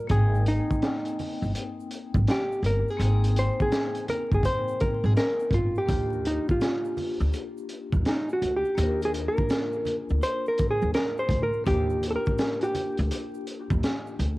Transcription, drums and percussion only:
0.09 kick loud
0.09 closed hi-hat medium
0.09 shaker medium
0.35 shaker soft
0.46 closed hi-hat medium
0.46 shaker soft
0.70 kick medium
0.70 shaker medium
0.82 snare loud
0.82 closed hi-hat medium
0.82 shaker medium
1.05 closed hi-hat soft
1.05 shaker soft
1.19 open hi-hat medium
1.19 low conga medium
1.19 shaker medium
1.43 shaker soft
1.55 closed hi-hat medium
1.55 shaker medium
1.80 shaker soft
1.91 closed hi-hat medium
1.91 shaker soft
2.14 kick medium
2.14 high conga medium
2.14 shaker soft
2.27 snare loud
2.27 closed hi-hat medium
2.27 shaker medium
2.52 shaker soft
2.64 closed hi-hat medium
2.64 low conga medium
2.64 shaker soft
2.88 shaker soft
3.00 closed hi-hat medium
3.00 shaker medium
3.24 closed hi-hat medium
3.24 shaker soft
3.36 closed hi-hat medium
3.36 shaker soft
3.60 kick medium
3.60 shaker soft
3.72 snare loud
3.72 closed hi-hat medium
3.72 shaker medium
3.95 closed hi-hat soft
3.95 shaker soft
4.08 closed hi-hat medium
4.08 low conga medium
4.08 shaker soft
4.32 kick medium
4.32 shaker soft
4.43 kick loud
4.43 closed hi-hat loud
4.43 shaker medium
4.68 shaker soft
4.80 kick loud
4.80 closed hi-hat medium
4.80 shaker soft
5.04 high conga medium
5.04 shaker soft
5.16 snare loud
5.16 closed hi-hat medium
5.16 shaker medium
5.40 shaker soft
5.51 kick medium
5.51 closed hi-hat medium
5.51 low conga medium
5.51 shaker soft
5.75 shaker soft
5.88 kick loud
5.88 closed hi-hat medium
5.88 shaker medium
6.13 shaker soft
6.25 closed hi-hat medium
6.25 shaker soft
6.48 kick loud
6.48 shaker soft
6.60 snare loud
6.60 closed hi-hat medium
6.60 shaker medium
6.85 shaker soft
6.97 open hi-hat medium
6.97 low conga medium
6.97 shaker soft
7.20 shaker soft
7.33 closed hi-hat medium
7.33 shaker medium
7.57 shaker soft
7.69 closed hi-hat medium
7.69 shaker soft
7.92 kick medium
7.92 high conga medium
7.92 shaker medium
8.05 snare loud
8.05 closed hi-hat medium
8.05 shaker medium
8.29 shaker soft
8.42 closed hi-hat medium
8.42 low conga medium
8.42 shaker soft
8.65 shaker soft
8.77 closed hi-hat medium
8.77 shaker medium
9.01 closed hi-hat medium
9.01 shaker soft
9.14 closed hi-hat medium
9.14 shaker soft
9.37 kick medium
9.37 shaker soft
9.49 snare loud
9.49 closed hi-hat medium
9.49 shaker medium
9.73 shaker soft
9.85 closed hi-hat medium
9.85 low conga medium
9.85 shaker soft
10.09 shaker soft
10.22 closed hi-hat medium
10.22 shaker medium
10.46 shaker soft
10.58 kick loud
10.58 closed hi-hat medium
10.58 shaker soft
10.82 high conga medium
10.82 shaker soft
10.94 snare loud
10.94 closed hi-hat medium
10.94 shaker medium
11.17 shaker soft
11.29 kick medium
11.29 closed hi-hat medium
11.29 low conga medium
11.29 shaker soft
11.53 shaker soft
11.66 kick loud
11.66 closed hi-hat medium
11.66 shaker medium
11.90 shaker soft
12.03 closed hi-hat medium
12.03 shaker soft
12.26 kick medium
12.26 shaker soft
12.38 snare loud
12.38 closed hi-hat medium
12.38 shaker medium
12.61 closed hi-hat soft
12.61 shaker soft
12.74 closed hi-hat medium
12.74 low conga medium
12.74 shaker soft
12.98 closed hi-hat soft
12.98 shaker soft
13.11 closed hi-hat medium
13.11 shaker medium
13.34 shaker medium
13.47 closed hi-hat medium
13.47 shaker medium
13.70 kick loud
13.70 high conga medium
13.70 shaker medium
13.83 snare loud
13.83 closed hi-hat medium
13.83 shaker medium
14.07 shaker medium
14.20 closed hi-hat medium
14.20 low conga medium
14.20 shaker soft

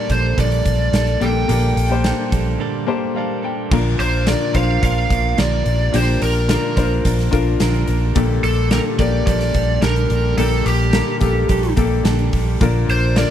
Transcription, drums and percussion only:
0.10 kick medium
0.10 closed hi-hat medium
0.38 kick medium
0.38 closed hi-hat medium
0.52 closed hi-hat soft
0.66 kick medium
0.66 closed hi-hat medium
0.93 snare loud
0.93 closed hi-hat medium
1.07 closed hi-hat soft
1.22 closed hi-hat medium
1.49 closed hi-hat medium
1.77 closed hi-hat medium
2.04 snare loud
2.04 closed hi-hat medium
2.32 kick medium
2.32 closed hi-hat medium
3.71 kick loud
3.71 crash medium
4.00 closed hi-hat medium
4.27 snare medium
4.27 closed hi-hat medium
4.54 kick medium
4.54 closed hi-hat medium
4.83 kick medium
4.83 closed hi-hat medium
5.10 kick medium
5.10 closed hi-hat medium
5.38 snare loud
5.38 closed hi-hat medium
5.66 closed hi-hat medium
5.94 closed hi-hat medium
6.22 closed hi-hat medium
6.49 snare loud
6.49 closed hi-hat medium
6.77 kick medium
6.77 closed hi-hat medium
7.05 kick medium
7.05 closed hi-hat medium
7.19 snare soft
7.19 closed hi-hat soft
7.32 kick medium
7.32 closed hi-hat medium
7.60 snare loud
7.60 closed hi-hat medium
7.74 closed hi-hat soft
7.88 closed hi-hat medium
8.15 kick loud
8.15 closed hi-hat medium
8.44 closed hi-hat medium
8.71 snare loud
8.71 closed hi-hat medium
8.99 kick medium
8.99 closed hi-hat medium
9.27 kick medium
9.27 closed hi-hat medium
9.41 snare soft
9.41 closed hi-hat soft
9.54 kick medium
9.54 closed hi-hat medium
9.82 snare loud
9.82 closed hi-hat medium
9.96 closed hi-hat soft
10.10 closed hi-hat medium
10.38 closed hi-hat medium
10.66 closed hi-hat medium
10.93 snare loud
10.93 closed hi-hat medium
11.21 kick medium
11.21 closed hi-hat medium
11.49 kick medium
11.49 closed hi-hat medium
11.63 closed hi-hat medium
11.77 kick medium
11.77 closed hi-hat medium
12.05 snare loud
12.05 closed hi-hat medium
12.19 closed hi-hat soft
12.33 kick medium
12.33 open hi-hat medium
12.61 kick loud
12.61 closed hi-hat medium
12.89 closed hi-hat medium
13.16 snare loud
13.16 closed hi-hat medium

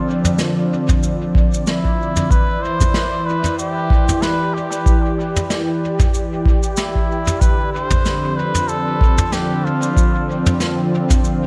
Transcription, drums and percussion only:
0.25 mid tom medium
0.25 shaker medium
0.38 snare medium
0.38 shaker soft
0.89 kick loud
0.89 mid tom medium
0.89 shaker medium
1.03 shaker medium
1.35 kick loud
1.54 shaker medium
1.67 snare medium
1.67 shaker medium
1.85 kick medium
2.16 mid tom medium
2.16 shaker medium
2.31 kick loud
2.31 shaker medium
2.81 kick loud
2.81 mid tom medium
2.81 shaker medium
2.94 snare medium
2.94 shaker medium
3.44 mid tom medium
3.44 shaker medium
3.59 shaker medium
3.90 kick loud
4.09 mid tom medium
4.09 shaker medium
4.22 snare medium
4.22 shaker medium
4.72 shaker medium
4.86 kick loud
4.86 shaker medium
5.36 mid tom medium
5.36 shaker medium
5.50 snare medium
5.50 shaker medium
5.99 kick loud
5.99 mid tom medium
5.99 shaker medium
6.14 shaker medium
6.46 kick loud
6.63 shaker medium
6.77 snare medium
6.77 shaker medium
6.95 kick medium
7.27 mid tom medium
7.27 shaker medium
7.41 kick loud
7.41 shaker medium
7.90 kick loud
7.90 mid tom medium
7.90 shaker medium
8.05 snare medium
8.05 shaker medium
8.54 mid tom medium
8.54 shaker medium
8.69 shaker medium
9.01 kick loud
9.18 mid tom medium
9.18 shaker medium
9.32 snare medium
9.32 shaker medium
9.83 shaker medium
9.97 kick loud
9.97 shaker medium
10.46 mid tom medium
10.46 shaker medium
10.60 snare medium
10.60 shaker medium
11.10 kick loud
11.10 mid tom medium
11.10 shaker medium
11.24 shaker medium

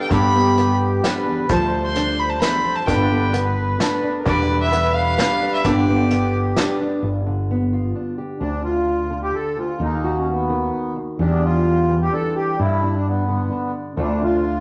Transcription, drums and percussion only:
0.11 kick loud
0.11 closed hi-hat medium
0.58 closed hi-hat soft
1.04 snare medium
1.04 closed hi-hat medium
1.49 kick loud
1.49 closed hi-hat medium
1.95 closed hi-hat medium
2.42 snare medium
2.42 closed hi-hat medium
2.88 kick loud
2.88 closed hi-hat medium
3.34 closed hi-hat medium
3.80 snare medium
3.80 closed hi-hat medium
4.26 kick loud
4.26 closed hi-hat soft
4.73 closed hi-hat medium
5.19 snare medium
5.19 closed hi-hat medium
5.64 kick medium
5.64 closed hi-hat medium
6.11 closed hi-hat medium
6.57 snare medium
6.57 closed hi-hat soft

